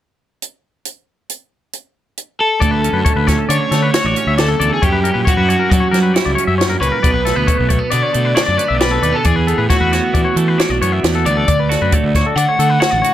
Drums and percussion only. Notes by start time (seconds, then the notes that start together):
0.42 closed hi-hat
0.85 closed hi-hat
1.29 closed hi-hat
1.73 closed hi-hat
2.17 closed hi-hat
2.62 kick, closed hi-hat
2.84 closed hi-hat
3.06 kick, closed hi-hat
3.28 kick, snare, closed hi-hat
3.50 closed hi-hat
3.72 snare, closed hi-hat
3.94 snare, closed hi-hat
4.16 closed hi-hat
4.38 snare, closed hi-hat
4.61 closed hi-hat
4.83 kick, closed hi-hat
5.05 closed hi-hat
5.27 kick, closed hi-hat
5.50 closed hi-hat
5.72 kick, closed hi-hat
5.94 snare, closed hi-hat
6.16 snare, closed hi-hat
6.38 closed hi-hat
6.61 snare, closed hi-hat
6.82 closed hi-hat
7.04 kick, closed hi-hat
7.26 snare, closed hi-hat
7.48 kick, closed hi-hat
7.70 kick, closed hi-hat
7.91 closed hi-hat
8.14 closed hi-hat
8.37 snare, closed hi-hat
8.59 closed hi-hat
8.80 snare, closed hi-hat
9.03 closed hi-hat
9.24 kick, closed hi-hat
9.48 closed hi-hat
9.70 kick, snare, closed hi-hat
9.93 snare, closed hi-hat
10.15 kick, closed hi-hat
10.37 closed hi-hat
10.59 snare, closed hi-hat
10.82 closed hi-hat
11.04 snare, closed hi-hat
11.26 closed hi-hat
11.48 kick, closed hi-hat
11.71 snare, closed hi-hat
11.92 kick, closed hi-hat
12.15 kick, snare, closed hi-hat
12.37 closed hi-hat
12.60 closed hi-hat
12.82 snare, closed hi-hat
13.04 closed hi-hat